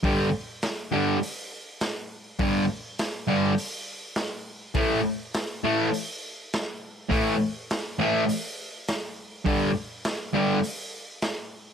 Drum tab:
HH |o-o-o-o-|o-o-o-o-|o-o-o-o-|o-o-o-o-|
SD |--o---o-|--o---o-|--o---o-|--o---o-|
BD |o-------|o-------|o-------|o-------|

HH |o-o-o-o-|
SD |--o---o-|
BD |o-------|